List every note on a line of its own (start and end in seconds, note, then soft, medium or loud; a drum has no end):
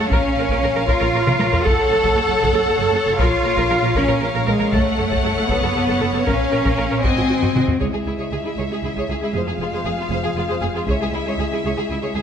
0.00 0.05 F#1 soft
0.00 0.11 A3 medium
0.00 1.61 C#5 medium
0.10 0.17 A#1 medium
0.10 0.88 C#4 medium
0.10 0.17 A#4 medium
0.10 1.62 F5 medium
0.10 taiko medium
0.38 0.43 A#1 soft
0.38 0.44 A#4 soft
0.49 0.56 A#1 medium
0.49 0.55 A#4 medium
0.49 taiko medium
0.63 0.68 A#1 soft
0.63 0.68 A#4 soft
0.75 0.81 A#1 soft
0.75 0.80 A#4 soft
0.87 0.94 A#1 medium
0.87 1.63 F4 medium
0.87 1.66 F4 medium
0.87 0.93 A#4 medium
0.87 taiko medium
1.00 1.07 A#1 soft
1.00 1.05 A#4 soft
1.14 1.19 A#1 soft
1.14 1.19 A#4 soft
1.26 1.32 A#1 medium
1.26 1.32 A#4 medium
1.26 taiko mid medium
1.39 1.44 A#1 soft
1.39 1.44 A#4 medium
1.39 taiko high medium
1.51 1.56 A#1 soft
1.51 1.57 A#4 soft
1.51 taiko low medium
1.64 1.69 F#1 medium
1.64 1.70 A4 medium
1.64 3.19 A4 medium
1.64 3.16 A4 medium
1.64 4.69 C#5 medium
1.64 3.16 F#5 medium
1.64 taiko medium
1.90 1.95 F#1 soft
1.90 1.96 A4 soft
2.03 2.08 F#1 medium
2.03 2.09 A4 medium
2.03 taiko medium
2.16 2.21 F#1 soft
2.16 2.21 A4 medium
2.28 2.34 F#1 soft
2.28 2.34 A4 soft
2.41 2.46 F#1 medium
2.41 2.47 A4 medium
2.41 taiko medium
2.54 2.60 F#1 soft
2.54 2.59 A4 medium
2.66 2.72 F#1 soft
2.66 2.73 A4 soft
2.79 2.84 F#1 medium
2.79 2.86 A4 medium
2.92 2.98 F#1 soft
2.92 2.99 A4 soft
3.06 3.11 F#1 soft
3.06 3.11 A4 medium
3.19 3.24 A#1 medium
3.19 3.96 F4 medium
3.19 3.95 F4 medium
3.19 3.24 A#4 medium
3.19 4.70 F5 medium
3.19 taiko medium
3.45 3.50 A#1 soft
3.45 3.50 A#4 soft
3.56 3.62 A#1 medium
3.56 3.62 A#4 medium
3.56 taiko medium
3.70 3.76 A#1 soft
3.70 3.75 A#4 soft
3.83 3.88 A#1 medium
3.83 3.88 A#4 soft
3.95 4.01 A#1 medium
3.95 4.22 C#4 medium
3.95 4.01 A#4 medium
3.95 taiko medium
4.08 4.14 A#1 soft
4.08 4.14 A#4 soft
4.21 4.26 A#1 soft
4.21 4.26 A#4 soft
4.34 4.39 A#1 medium
4.34 4.40 A#4 medium
4.46 4.52 A#1 soft
4.46 4.71 G#3 medium
4.46 4.52 A#4 soft
4.59 4.65 A#1 soft
4.59 4.65 A#4 soft
4.72 4.77 F#1 medium
4.72 5.49 A3 medium
4.72 5.50 A3 medium
4.72 4.77 A4 medium
4.72 7.00 C#5 medium
4.72 6.27 F#5 medium
4.72 taiko medium
4.98 5.03 F#1 soft
4.98 5.03 A4 soft
5.10 5.16 F#1 medium
5.10 5.16 A4 medium
5.10 taiko medium
5.24 5.29 F#1 soft
5.24 5.29 A4 soft
5.36 5.42 F#1 soft
5.36 5.42 A4 soft
5.49 5.55 F#1 medium
5.49 6.27 B3 medium
5.49 5.55 A4 medium
5.49 taiko medium
5.62 5.67 F#1 soft
5.62 5.68 A4 soft
5.75 5.80 F#1 soft
5.75 5.81 A4 soft
5.87 5.92 F#1 medium
5.87 5.93 A4 medium
6.00 6.06 F#1 soft
6.00 6.06 A4 soft
6.12 6.17 F#1 soft
6.12 6.19 A4 soft
6.25 6.31 A#1 medium
6.25 7.02 C#4 medium
6.25 6.31 A#4 medium
6.25 7.04 F5 soft
6.25 taiko medium
6.52 6.57 A#1 soft
6.52 6.57 A#4 soft
6.64 6.69 A#1 soft
6.64 6.70 A#4 medium
6.64 taiko medium
6.77 6.83 A#1 soft
6.77 6.83 A#4 soft
6.90 6.96 A#1 soft
6.90 6.96 A#4 soft
7.03 7.09 G#1 soft
7.03 7.80 C4 medium
7.03 7.79 C4 soft
7.03 7.08 F#4 soft
7.03 7.61 D#5 soft
7.03 7.59 G#5 soft
7.03 taiko medium
7.16 7.22 G#1 soft
7.16 7.22 F#4 soft
7.29 7.34 G#1 soft
7.29 7.34 F#4 soft
7.41 7.46 G#1 soft
7.41 7.47 F#4 soft
7.41 taiko low-mid medium
7.55 7.60 G#1 soft
7.55 7.60 F#4 soft
7.55 taiko mid medium
7.67 7.73 G#1 soft
7.67 7.72 F#4 soft
7.67 taiko low medium
7.79 7.85 C#2 soft
7.79 7.86 C#2 soft
7.79 10.84 G#3 soft
7.79 9.30 E4 soft
7.79 7.85 G#4 soft
7.79 7.85 C#5 soft
7.79 9.31 E5 soft
7.79 taiko soft
7.93 7.99 C#2 soft
7.93 7.98 G#4 soft
8.06 8.11 C#2 soft
8.06 8.12 E4 soft
8.06 8.11 G#4 soft
8.18 8.24 C#2 soft
8.18 8.24 G#4 soft
8.18 8.24 C#5 soft
8.32 8.37 C#2 soft
8.32 8.37 G#4 soft
8.44 8.49 C#2 soft
8.44 8.49 E4 soft
8.44 8.50 G#4 soft
8.57 8.62 C#2 soft
8.57 8.63 C#2 soft
8.57 8.63 G#4 soft
8.57 8.63 C#5 soft
8.70 8.75 C#2 soft
8.70 8.76 G#4 soft
8.70 8.77 G#4 soft
8.83 8.88 C#2 soft
8.83 8.89 E4 soft
8.83 8.88 G#4 soft
8.95 9.00 C#2 soft
8.95 9.02 G#4 soft
8.95 9.03 C#5 soft
8.95 taiko soft
9.08 9.13 C#2 soft
9.08 9.14 G#4 soft
9.08 9.16 G#4 soft
9.21 9.26 C#2 soft
9.21 9.28 E4 soft
9.21 9.27 G#4 soft
9.34 9.39 F1 medium
9.34 9.39 F2 soft
9.34 10.89 F4 soft
9.34 9.39 G#4 soft
9.34 9.41 C5 soft
9.34 10.88 F5 soft
9.47 9.52 F2 soft
9.47 9.52 G#4 soft
9.47 9.53 G#4 soft
9.59 9.64 F1 soft
9.59 9.66 F2 soft
9.59 9.67 F4 soft
9.59 9.66 G#4 soft
9.73 9.78 F2 medium
9.73 9.78 G#4 medium
9.73 9.79 C5 medium
9.84 9.90 F1 soft
9.84 9.90 F2 soft
9.84 9.90 G#4 soft
9.84 9.91 G#4 soft
9.98 10.03 F2 soft
9.98 10.05 F4 soft
9.98 10.03 G#4 soft
10.10 10.16 F1 medium
10.10 10.15 F2 medium
10.10 10.16 G#4 medium
10.10 10.17 C5 medium
10.23 10.29 F2 soft
10.23 10.29 G#4 soft
10.36 10.41 F1 soft
10.36 10.42 F2 soft
10.36 10.42 F4 soft
10.36 10.42 G#4 soft
10.48 10.55 F2 medium
10.48 10.54 G#4 medium
10.48 10.54 C5 medium
10.61 10.67 F1 soft
10.61 10.67 F2 soft
10.61 10.66 G#4 soft
10.61 10.67 G#4 soft
10.74 10.80 F2 soft
10.74 10.81 F4 soft
10.74 10.80 G#4 soft
10.87 10.92 C#2 medium
10.87 10.93 C#2 medium
10.87 12.22 G#3 soft
10.87 12.22 E4 soft
10.87 10.93 G#4 medium
10.87 10.94 C#5 medium
10.87 12.22 E5 soft
10.87 taiko soft
11.01 11.07 C#2 soft
11.01 11.06 G#4 soft
11.01 11.07 G#4 soft
11.12 11.17 C#2 soft
11.12 11.18 C#2 soft
11.12 11.19 E4 soft
11.12 11.19 G#4 soft
11.26 11.31 C#2 medium
11.26 11.32 G#4 medium
11.26 11.32 C#5 soft
11.38 11.44 C#2 soft
11.38 11.44 G#4 soft
11.38 11.45 G#4 soft
11.52 11.57 C#2 soft
11.52 11.58 E4 soft
11.52 11.57 G#4 soft
11.64 11.70 C#2 medium
11.64 11.70 G#4 soft
11.64 11.70 C#5 soft
11.76 11.83 C#2 soft
11.76 11.82 G#4 soft
11.76 11.83 G#4 soft
11.90 11.95 C#2 soft
11.90 11.96 C#2 soft
11.90 11.96 E4 soft
11.90 11.95 G#4 soft
12.02 12.09 C#2 medium
12.02 12.08 G#4 soft
12.02 12.08 C#5 soft
12.15 12.21 C#2 soft
12.15 12.20 G#4 soft
12.15 12.21 G#4 soft